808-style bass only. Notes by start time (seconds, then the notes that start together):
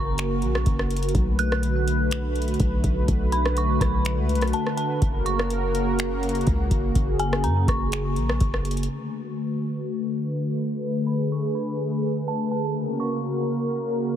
Already playing: F#1
0.42 A#1
0.66 F#1
1.15 B1
2.60 B1
2.84 B1
3.08 B1
3.81 B1
4.17 C#2
4.35 B1
5.02 F#1
6.47 C#2
6.71 F#1
6.96 F#1
7.44 F#2
7.68 F#1
8.16 A#1
8.41 F#1